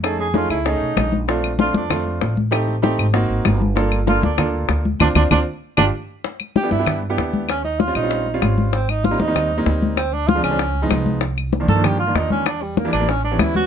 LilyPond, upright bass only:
\new Staff \with { instrumentName = "Upright bass" } { \clef bass \time 4/4 \key g \minor \tempo 4 = 193 f,4. cis,4 b,,8 bes,,4~ | bes,,4. f,4. a,,4~ | a,,4. aes,,4 aes,,8 g,,4~ | g,,4. d,4. d,4 |
d,8 d,8 d,8 r4 g,,8 r4 | r4. g,4. ees,4~ | ees,4. bes,,4. aes,,4~ | aes,,4. ees,4. d,4~ |
d,4. cis,4. c,4~ | c,4. g,4. e,4~ | e,4. a,,4. d,4 | }